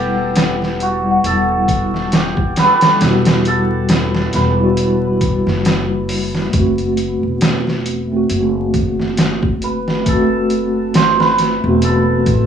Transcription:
Already playing: E1 G3 E4 G4 A4 B4 F#5
0.36 snare, closed hi-hat
0.62 snare
0.80 F#4, closed hi-hat
1.01 G3
1.06 E4
1.11 F#5
1.24 E1 A4, closed hi-hat
1.68 kick, closed hi-hat
1.94 snare
2.12 G4, snare, closed hi-hat
2.37 kick
2.56 B4, snare, closed hi-hat
2.65 A4
2.75 B4
2.81 snare, closed hi-hat
2.97 E1 G3, closed hi-hat
3.02 E4, snare
3.07 F#4
3.25 snare, closed hi-hat
3.45 A4, closed hi-hat
3.89 snare, closed hi-hat
4.15 snare
4.33 E1 B4, snare, closed hi-hat
4.54 G3
4.59 E4
4.64 F#4
4.77 closed hi-hat
5.21 kick, closed hi-hat
5.47 F#1, snare
5.65 snare, closed hi-hat
6.09 open hi-hat
6.35 snare
6.50 A3, kick, closed hi-hat
6.54 F#1 C4
6.60 F#4
6.78 closed hi-hat
6.97 closed hi-hat
7.23 E1
7.41 snare, closed hi-hat
7.67 snare
7.86 closed hi-hat
8.07 A3
8.12 C4
8.17 F#4
8.30 F#1, closed hi-hat
8.74 kick, closed hi-hat
9.00 snare
9.17 snare, closed hi-hat
9.43 kick
9.62 B4, closed hi-hat
9.88 snare
10.02 A3, kick, closed hi-hat
10.07 C4 A4
10.12 F#4
10.50 closed hi-hat
10.94 C5, snare, closed hi-hat
11.20 B4, snare
11.38 snare, closed hi-hat
11.59 A3
11.64 E1 C4
11.69 F#4
11.82 A4, closed hi-hat
12.26 A1, kick, closed hi-hat

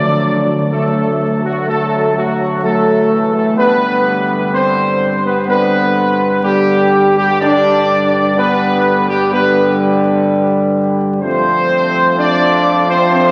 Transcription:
Already playing: D2 D3 F#3 A3 D4 D5
0.71 F#3 A3 A4
1.43 F#3 F#4
1.67 F#3 A3 A4
2.14 F#3 F#4
2.62 F#3 A3 A4
3.12 E3
3.33 A3 A4
3.56 G2 D3 G3 B3 B4
4.53 C4 C5
5.24 B3 B4
5.47 D3 G3 B3 B4
6.43 D3 G3 G4
7.18 G3 G4
7.40 G2 D3 G3 D4 D5
8.37 D3 G3 B3 B4
9.09 G3 G4
9.33 D3 G3 B3 B4
11.22 F2 F3 A3 C4 C5
12.19 D4 D5
12.90 C4 C5
13.13 C4 C5

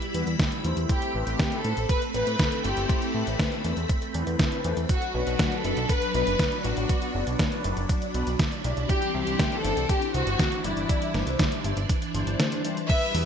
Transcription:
Already playing: G3 E4 B5
0.02 closed hi-hat
0.14 E2 G3 B3 E4 B4, closed hi-hat
0.27 E2, closed hi-hat
0.39 kick, snare, closed hi-hat
0.52 closed hi-hat
0.64 E2 A3 C4 E4 C5, closed hi-hat
0.77 E2, closed hi-hat
0.89 A3 C4 G4, kick, closed hi-hat
1.02 closed hi-hat
1.15 A1 A3 C4 E4 B4
1.23 G4, closed hi-hat
1.27 A1
1.39 kick, snare, closed hi-hat
1.52 closed hi-hat
1.56 A4
1.64 A2 A3 C4 E4 B4, closed hi-hat
1.77 A1, closed hi-hat
1.89 B4, kick, closed hi-hat
2.02 closed hi-hat
2.14 A1 A3 C4 E4 B4, closed hi-hat
2.27 A2, closed hi-hat
2.39 kick, snare, closed hi-hat
2.52 closed hi-hat
2.64 G1 A3 C4 E4 G4 C5, closed hi-hat
2.77 G1, closed hi-hat
2.89 kick, closed hi-hat
3.02 closed hi-hat
3.14 A2 A3 C4 E4 B4
3.27 A1, closed hi-hat
3.39 kick, snare, closed hi-hat
3.52 closed hi-hat
3.64 E2 A3 C4 E4 B4, closed hi-hat
3.77 E2, closed hi-hat
3.89 kick, closed hi-hat
4.02 closed hi-hat
4.14 E2 A3 C4 E4 B4, closed hi-hat
4.27 E2, closed hi-hat
4.39 kick, snare, closed hi-hat
4.52 A3 C4 E4 B4, closed hi-hat
4.64 E2 A3 C4 E4 B4, closed hi-hat
4.77 E2, closed hi-hat
4.89 F#3 D4 F#4, kick, closed hi-hat
5.02 closed hi-hat
5.14 B1 F#3 B3 D4 B4
5.23 F#4, closed hi-hat
5.27 B1
5.39 kick, snare, closed hi-hat
5.52 closed hi-hat
5.56 A4
5.64 F#1 F#3 B3 D4 B4, closed hi-hat
5.77 B1, closed hi-hat
5.89 B4, kick, closed hi-hat
6.02 closed hi-hat
6.14 B1 F#3 B3 D4 B4, closed hi-hat
6.27 F#1, closed hi-hat
6.39 kick, snare, closed hi-hat
6.52 closed hi-hat
6.64 A1 F#3 B3 D4 F#4 D5, closed hi-hat
6.77 A1, closed hi-hat
6.89 kick, closed hi-hat
7.02 closed hi-hat
7.14 F#1 F#3 B3 D4 B4
7.27 B1, closed hi-hat
7.39 kick, snare, closed hi-hat
7.52 closed hi-hat
7.64 F#1 F#3 B3 D4 B4, closed hi-hat
7.77 F#1, closed hi-hat
7.89 kick, closed hi-hat
8.02 closed hi-hat
8.14 B1 F#3 B3 D4 B4, closed hi-hat
8.27 B1, closed hi-hat
8.39 kick, snare, closed hi-hat
8.52 closed hi-hat
8.64 B1 G3 D4 E4 D5, closed hi-hat
8.77 B1, closed hi-hat
8.89 E3 C4 D4 G4, kick, closed hi-hat
9.02 closed hi-hat
9.14 C2 G3 D4 E4 C5
9.23 G4
9.27 C2, closed hi-hat
9.39 kick, snare, closed hi-hat
9.52 closed hi-hat
9.56 A4
9.64 G1 G3 D4 E4 C5, closed hi-hat
9.77 C2, closed hi-hat
9.89 G4, kick, closed hi-hat
10.02 closed hi-hat
10.14 C2 G3 D4 E4 F#4 C5, closed hi-hat
10.27 G1, closed hi-hat
10.39 kick, snare, closed hi-hat
10.52 closed hi-hat
10.64 G1 G3 D4 E4 D5, closed hi-hat
10.77 G1, closed hi-hat
10.89 kick, closed hi-hat
11.02 closed hi-hat
11.14 G1 G3 D4 E4 C5, snare, closed hi-hat
11.27 C2, closed hi-hat
11.39 kick, snare, closed hi-hat
11.52 closed hi-hat
11.64 G1 G3 D4 E4 C5, closed hi-hat
11.77 G1, closed hi-hat
11.89 kick, closed hi-hat
12.02 closed hi-hat
12.14 G1 G3 D4 E4 C5, closed hi-hat
12.27 G1, closed hi-hat
12.40 snare, closed hi-hat
12.52 G3 D4 E4 C5, closed hi-hat
12.64 G3 D4 E4 C5, closed hi-hat
12.77 closed hi-hat
12.89 B2 G3 E4 B4 E5, kick, closed hi-hat, crash
13.02 closed hi-hat
13.14 E2 G3 B3 E4 B4, open hi-hat

